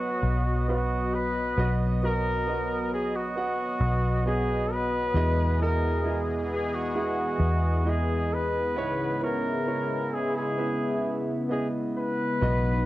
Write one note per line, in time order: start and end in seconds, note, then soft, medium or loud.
0.00 0.19 B1 medium
0.00 5.12 F#3 medium
0.00 0.68 B3 medium
0.00 12.86 B3 medium
0.00 0.65 F#4 medium
0.00 0.69 F#4 medium
0.00 0.65 B4 medium
0.00 1.59 D#5 medium
0.00 8.73 D#5 medium
0.23 1.54 B1 loud
0.68 1.53 B3 medium
0.68 1.16 F#4 medium
0.68 1.54 F#4 medium
0.68 1.54 B4 medium
1.15 1.77 B4 loud
1.58 3.77 B1 medium
1.58 2.00 B3 medium
1.58 2.01 F#4 medium
1.58 2.01 D#5 medium
2.02 2.45 B3 medium
2.02 2.45 F#4 medium
2.02 2.89 A#4 loud
2.02 2.46 D#5 medium
2.47 3.32 B3 medium
2.47 3.33 F#4 medium
2.47 3.33 D#5 medium
2.94 3.17 G#4 medium
3.16 4.26 F#4 medium
3.36 4.21 B3 medium
3.36 4.22 F#4 medium
3.36 4.22 F#5 medium
3.81 5.11 B1 loud
4.26 5.11 B3 medium
4.26 5.11 F#4 medium
4.26 4.74 G#4 medium
4.26 5.11 D#5 medium
4.73 5.61 B4 loud
5.14 7.36 E2 loud
5.14 6.46 B2 medium
5.14 8.72 E3 medium
5.14 5.58 G#3 medium
5.14 5.58 E4 medium
5.14 8.72 G#4 medium
5.14 5.58 D#5 loud
5.60 6.03 G#3 medium
5.60 6.03 E4 medium
5.60 6.20 A#4 loud
5.60 6.04 D#5 medium
6.04 6.90 G#3 medium
6.04 6.91 E4 medium
6.04 6.91 D#5 medium
6.53 6.76 G#4 medium
6.75 7.90 F#4 loud
6.95 7.81 G#3 medium
6.95 7.81 E4 medium
6.95 7.81 F#5 medium
7.39 8.77 E2 loud
7.85 8.71 G#3 medium
7.85 8.72 E4 medium
7.85 8.72 D#5 medium
7.89 8.35 G#4 medium
8.34 9.23 B4 loud
8.76 12.38 C#2 medium
8.76 10.09 G#2 medium
8.76 12.38 C#3 medium
8.76 12.38 G#3 medium
8.76 9.19 B3 medium
8.76 9.20 E4 medium
8.76 12.39 E4 medium
8.76 9.20 C#5 medium
9.21 9.65 B3 medium
9.21 9.65 E4 medium
9.21 10.15 A#4 medium
9.21 9.66 C#5 medium
9.66 10.53 B3 medium
9.66 10.54 E4 medium
9.66 10.54 C#5 medium
10.14 10.36 G#4 medium
10.37 11.19 G#4 medium
10.58 11.45 B3 medium
10.58 11.45 E4 medium
10.58 11.46 E5 medium
11.49 12.37 B3 medium
11.49 12.37 E4 medium
11.49 11.68 G#4 medium
11.49 12.38 D#5 medium
11.98 12.86 B4 loud
12.41 12.86 B1 medium
12.41 12.86 F#3 medium
12.41 12.85 B3 medium
12.41 12.86 D#4 medium
12.41 12.85 F#4 medium
12.41 12.86 D#5 medium